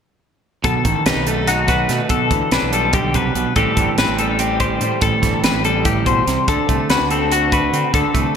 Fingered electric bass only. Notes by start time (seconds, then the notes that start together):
0.65 B1
0.85 A1
1.06 B1
1.15 B1
1.89 B2
2.10 B1
2.30 D2
2.52 B1
2.63 B1
3.35 B1
3.56 A1
3.77 G1
3.98 A1
4.08 A1
4.81 A2
5.02 A1
5.23 G1
5.43 A1
5.54 A1
6.27 C2
6.48 D2
6.69 C2
6.90 D2
7.00 D2
7.73 D3
7.94 D2
8.15 C2